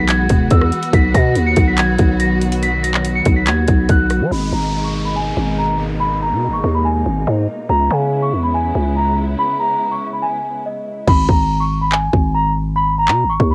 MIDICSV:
0, 0, Header, 1, 6, 480
1, 0, Start_track
1, 0, Key_signature, 5, "minor"
1, 0, Tempo, 422535
1, 1061, Time_signature, 4, 2, 24, 8
1, 15388, End_track
2, 0, Start_track
2, 0, Title_t, "Celesta"
2, 0, Program_c, 0, 8
2, 98, Note_on_c, 0, 92, 90
2, 550, Note_off_c, 0, 92, 0
2, 582, Note_on_c, 0, 88, 79
2, 1033, Note_off_c, 0, 88, 0
2, 1071, Note_on_c, 0, 95, 102
2, 1255, Note_off_c, 0, 95, 0
2, 1304, Note_on_c, 0, 94, 90
2, 1641, Note_off_c, 0, 94, 0
2, 1665, Note_on_c, 0, 97, 89
2, 1852, Note_off_c, 0, 97, 0
2, 1905, Note_on_c, 0, 95, 74
2, 1997, Note_off_c, 0, 95, 0
2, 2028, Note_on_c, 0, 92, 86
2, 2476, Note_off_c, 0, 92, 0
2, 2495, Note_on_c, 0, 94, 85
2, 2685, Note_off_c, 0, 94, 0
2, 2985, Note_on_c, 0, 95, 105
2, 3171, Note_off_c, 0, 95, 0
2, 3216, Note_on_c, 0, 94, 80
2, 3557, Note_off_c, 0, 94, 0
2, 3582, Note_on_c, 0, 97, 83
2, 3770, Note_off_c, 0, 97, 0
2, 3819, Note_on_c, 0, 95, 78
2, 3914, Note_off_c, 0, 95, 0
2, 3942, Note_on_c, 0, 92, 90
2, 4392, Note_off_c, 0, 92, 0
2, 4431, Note_on_c, 0, 90, 73
2, 4878, Note_off_c, 0, 90, 0
2, 4906, Note_on_c, 0, 83, 90
2, 5092, Note_off_c, 0, 83, 0
2, 5142, Note_on_c, 0, 82, 73
2, 5479, Note_off_c, 0, 82, 0
2, 5499, Note_on_c, 0, 85, 74
2, 5688, Note_off_c, 0, 85, 0
2, 5739, Note_on_c, 0, 83, 70
2, 5833, Note_off_c, 0, 83, 0
2, 5861, Note_on_c, 0, 80, 82
2, 6312, Note_off_c, 0, 80, 0
2, 6346, Note_on_c, 0, 82, 78
2, 6532, Note_off_c, 0, 82, 0
2, 6817, Note_on_c, 0, 83, 101
2, 7007, Note_off_c, 0, 83, 0
2, 7068, Note_on_c, 0, 82, 74
2, 7403, Note_off_c, 0, 82, 0
2, 7420, Note_on_c, 0, 85, 76
2, 7609, Note_off_c, 0, 85, 0
2, 7663, Note_on_c, 0, 83, 73
2, 7756, Note_off_c, 0, 83, 0
2, 7781, Note_on_c, 0, 80, 86
2, 8232, Note_off_c, 0, 80, 0
2, 8259, Note_on_c, 0, 75, 70
2, 8711, Note_off_c, 0, 75, 0
2, 8740, Note_on_c, 0, 82, 96
2, 8928, Note_off_c, 0, 82, 0
2, 8983, Note_on_c, 0, 80, 78
2, 9320, Note_off_c, 0, 80, 0
2, 9344, Note_on_c, 0, 85, 78
2, 9531, Note_off_c, 0, 85, 0
2, 9580, Note_on_c, 0, 83, 72
2, 9674, Note_off_c, 0, 83, 0
2, 9706, Note_on_c, 0, 80, 77
2, 10155, Note_off_c, 0, 80, 0
2, 10187, Note_on_c, 0, 82, 81
2, 10373, Note_off_c, 0, 82, 0
2, 10665, Note_on_c, 0, 83, 106
2, 10851, Note_off_c, 0, 83, 0
2, 10900, Note_on_c, 0, 82, 77
2, 11238, Note_off_c, 0, 82, 0
2, 11265, Note_on_c, 0, 85, 71
2, 11452, Note_off_c, 0, 85, 0
2, 11508, Note_on_c, 0, 83, 73
2, 11599, Note_off_c, 0, 83, 0
2, 11612, Note_on_c, 0, 80, 93
2, 12067, Note_off_c, 0, 80, 0
2, 12107, Note_on_c, 0, 75, 75
2, 12555, Note_off_c, 0, 75, 0
2, 12587, Note_on_c, 0, 83, 93
2, 12773, Note_off_c, 0, 83, 0
2, 12823, Note_on_c, 0, 82, 75
2, 13160, Note_off_c, 0, 82, 0
2, 13179, Note_on_c, 0, 85, 78
2, 13368, Note_off_c, 0, 85, 0
2, 13420, Note_on_c, 0, 83, 72
2, 13514, Note_off_c, 0, 83, 0
2, 13541, Note_on_c, 0, 80, 85
2, 13992, Note_off_c, 0, 80, 0
2, 14025, Note_on_c, 0, 82, 83
2, 14211, Note_off_c, 0, 82, 0
2, 14496, Note_on_c, 0, 83, 101
2, 14686, Note_off_c, 0, 83, 0
2, 14750, Note_on_c, 0, 82, 78
2, 15084, Note_off_c, 0, 82, 0
2, 15103, Note_on_c, 0, 85, 78
2, 15291, Note_off_c, 0, 85, 0
2, 15346, Note_on_c, 0, 83, 75
2, 15388, Note_off_c, 0, 83, 0
2, 15388, End_track
3, 0, Start_track
3, 0, Title_t, "String section"
3, 0, Program_c, 1, 48
3, 0, Note_on_c, 1, 52, 82
3, 0, Note_on_c, 1, 56, 73
3, 0, Note_on_c, 1, 59, 73
3, 0, Note_on_c, 1, 66, 88
3, 1016, Note_off_c, 1, 56, 0
3, 1021, Note_off_c, 1, 52, 0
3, 1059, Note_on_c, 1, 51, 83
3, 1060, Note_on_c, 1, 54, 76
3, 4855, Note_off_c, 1, 59, 0
3, 4855, Note_off_c, 1, 66, 0
3, 4862, Note_off_c, 1, 51, 0
3, 4862, Note_off_c, 1, 54, 0
3, 4900, Note_on_c, 1, 56, 70
3, 4900, Note_on_c, 1, 63, 80
3, 4902, Note_on_c, 1, 47, 75
3, 4902, Note_on_c, 1, 58, 69
3, 8702, Note_off_c, 1, 56, 0
3, 8702, Note_off_c, 1, 63, 0
3, 8703, Note_off_c, 1, 47, 0
3, 8703, Note_off_c, 1, 58, 0
3, 8738, Note_on_c, 1, 59, 70
3, 8739, Note_on_c, 1, 49, 77
3, 8739, Note_on_c, 1, 56, 71
3, 8739, Note_on_c, 1, 64, 81
3, 12541, Note_off_c, 1, 56, 0
3, 12541, Note_off_c, 1, 59, 0
3, 12542, Note_off_c, 1, 49, 0
3, 12542, Note_off_c, 1, 64, 0
3, 15388, End_track
4, 0, Start_track
4, 0, Title_t, "808-style bass"
4, 0, Program_c, 2, 38
4, 0, Note_on_c, 2, 35, 110
4, 321, Note_off_c, 2, 35, 0
4, 341, Note_on_c, 2, 28, 103
4, 571, Note_off_c, 2, 28, 0
4, 580, Note_on_c, 2, 40, 106
4, 811, Note_off_c, 2, 40, 0
4, 1061, Note_on_c, 2, 35, 114
4, 1291, Note_off_c, 2, 35, 0
4, 1301, Note_on_c, 2, 47, 105
4, 1540, Note_on_c, 2, 39, 101
4, 1557, Note_off_c, 2, 47, 0
4, 1768, Note_off_c, 2, 39, 0
4, 1781, Note_on_c, 2, 35, 108
4, 2242, Note_off_c, 2, 35, 0
4, 2263, Note_on_c, 2, 35, 99
4, 3656, Note_off_c, 2, 35, 0
4, 3701, Note_on_c, 2, 35, 106
4, 3941, Note_on_c, 2, 39, 103
4, 3958, Note_off_c, 2, 35, 0
4, 4169, Note_off_c, 2, 39, 0
4, 4182, Note_on_c, 2, 35, 104
4, 4412, Note_off_c, 2, 35, 0
4, 4421, Note_on_c, 2, 35, 109
4, 4781, Note_on_c, 2, 54, 103
4, 4798, Note_off_c, 2, 35, 0
4, 4895, Note_off_c, 2, 54, 0
4, 4901, Note_on_c, 2, 32, 110
4, 5131, Note_off_c, 2, 32, 0
4, 5139, Note_on_c, 2, 32, 97
4, 6062, Note_off_c, 2, 32, 0
4, 6100, Note_on_c, 2, 32, 103
4, 7181, Note_on_c, 2, 47, 98
4, 7198, Note_off_c, 2, 32, 0
4, 7362, Note_on_c, 2, 32, 97
4, 7379, Note_off_c, 2, 47, 0
4, 7532, Note_off_c, 2, 32, 0
4, 7542, Note_on_c, 2, 39, 101
4, 8002, Note_off_c, 2, 39, 0
4, 8021, Note_on_c, 2, 32, 100
4, 8251, Note_off_c, 2, 32, 0
4, 8262, Note_on_c, 2, 44, 106
4, 8492, Note_off_c, 2, 44, 0
4, 8740, Note_on_c, 2, 37, 108
4, 8971, Note_off_c, 2, 37, 0
4, 8981, Note_on_c, 2, 49, 105
4, 9461, Note_on_c, 2, 40, 97
4, 9478, Note_off_c, 2, 49, 0
4, 9917, Note_off_c, 2, 40, 0
4, 9941, Note_on_c, 2, 37, 99
4, 10632, Note_off_c, 2, 37, 0
4, 12580, Note_on_c, 2, 32, 113
4, 12811, Note_off_c, 2, 32, 0
4, 12821, Note_on_c, 2, 32, 103
4, 13742, Note_off_c, 2, 32, 0
4, 13782, Note_on_c, 2, 32, 106
4, 14861, Note_on_c, 2, 47, 99
4, 14878, Note_off_c, 2, 32, 0
4, 15041, Note_on_c, 2, 32, 104
4, 15058, Note_off_c, 2, 47, 0
4, 15212, Note_off_c, 2, 32, 0
4, 15221, Note_on_c, 2, 39, 104
4, 15388, Note_off_c, 2, 39, 0
4, 15388, End_track
5, 0, Start_track
5, 0, Title_t, "Downlifter"
5, 0, Program_c, 3, 103
5, 4901, Note_on_c, 3, 60, 82
5, 8741, Note_off_c, 3, 60, 0
5, 15388, End_track
6, 0, Start_track
6, 0, Title_t, "Drums"
6, 96, Note_on_c, 9, 42, 84
6, 100, Note_on_c, 9, 39, 105
6, 209, Note_off_c, 9, 42, 0
6, 214, Note_off_c, 9, 39, 0
6, 334, Note_on_c, 9, 42, 81
6, 341, Note_on_c, 9, 36, 95
6, 448, Note_off_c, 9, 42, 0
6, 455, Note_off_c, 9, 36, 0
6, 575, Note_on_c, 9, 42, 79
6, 580, Note_on_c, 9, 36, 101
6, 689, Note_off_c, 9, 42, 0
6, 694, Note_off_c, 9, 36, 0
6, 700, Note_on_c, 9, 37, 99
6, 813, Note_off_c, 9, 37, 0
6, 821, Note_on_c, 9, 42, 63
6, 934, Note_off_c, 9, 42, 0
6, 940, Note_on_c, 9, 42, 66
6, 1054, Note_off_c, 9, 42, 0
6, 1061, Note_on_c, 9, 36, 121
6, 1061, Note_on_c, 9, 42, 81
6, 1174, Note_off_c, 9, 36, 0
6, 1174, Note_off_c, 9, 42, 0
6, 1301, Note_on_c, 9, 36, 98
6, 1304, Note_on_c, 9, 42, 89
6, 1414, Note_off_c, 9, 36, 0
6, 1417, Note_off_c, 9, 42, 0
6, 1539, Note_on_c, 9, 42, 84
6, 1653, Note_off_c, 9, 42, 0
6, 1776, Note_on_c, 9, 42, 87
6, 1781, Note_on_c, 9, 36, 95
6, 1890, Note_off_c, 9, 42, 0
6, 1895, Note_off_c, 9, 36, 0
6, 2018, Note_on_c, 9, 42, 82
6, 2022, Note_on_c, 9, 39, 106
6, 2131, Note_off_c, 9, 42, 0
6, 2135, Note_off_c, 9, 39, 0
6, 2255, Note_on_c, 9, 42, 79
6, 2262, Note_on_c, 9, 36, 96
6, 2368, Note_off_c, 9, 42, 0
6, 2376, Note_off_c, 9, 36, 0
6, 2496, Note_on_c, 9, 42, 78
6, 2610, Note_off_c, 9, 42, 0
6, 2742, Note_on_c, 9, 42, 64
6, 2855, Note_off_c, 9, 42, 0
6, 2861, Note_on_c, 9, 42, 67
6, 2975, Note_off_c, 9, 42, 0
6, 2982, Note_on_c, 9, 42, 80
6, 3095, Note_off_c, 9, 42, 0
6, 3225, Note_on_c, 9, 42, 88
6, 3338, Note_off_c, 9, 42, 0
6, 3342, Note_on_c, 9, 39, 105
6, 3455, Note_off_c, 9, 39, 0
6, 3459, Note_on_c, 9, 42, 86
6, 3573, Note_off_c, 9, 42, 0
6, 3695, Note_on_c, 9, 42, 84
6, 3702, Note_on_c, 9, 36, 94
6, 3809, Note_off_c, 9, 42, 0
6, 3815, Note_off_c, 9, 36, 0
6, 3937, Note_on_c, 9, 42, 84
6, 3942, Note_on_c, 9, 39, 110
6, 4051, Note_off_c, 9, 42, 0
6, 4055, Note_off_c, 9, 39, 0
6, 4175, Note_on_c, 9, 42, 78
6, 4182, Note_on_c, 9, 36, 93
6, 4289, Note_off_c, 9, 42, 0
6, 4296, Note_off_c, 9, 36, 0
6, 4416, Note_on_c, 9, 42, 78
6, 4421, Note_on_c, 9, 36, 101
6, 4530, Note_off_c, 9, 42, 0
6, 4534, Note_off_c, 9, 36, 0
6, 4656, Note_on_c, 9, 42, 73
6, 4661, Note_on_c, 9, 37, 68
6, 4769, Note_off_c, 9, 42, 0
6, 4775, Note_off_c, 9, 37, 0
6, 12580, Note_on_c, 9, 49, 95
6, 12581, Note_on_c, 9, 36, 114
6, 12694, Note_off_c, 9, 36, 0
6, 12694, Note_off_c, 9, 49, 0
6, 12821, Note_on_c, 9, 36, 94
6, 12934, Note_off_c, 9, 36, 0
6, 13541, Note_on_c, 9, 39, 102
6, 13655, Note_off_c, 9, 39, 0
6, 13782, Note_on_c, 9, 36, 89
6, 13896, Note_off_c, 9, 36, 0
6, 14861, Note_on_c, 9, 39, 104
6, 14974, Note_off_c, 9, 39, 0
6, 15221, Note_on_c, 9, 36, 94
6, 15335, Note_off_c, 9, 36, 0
6, 15388, End_track
0, 0, End_of_file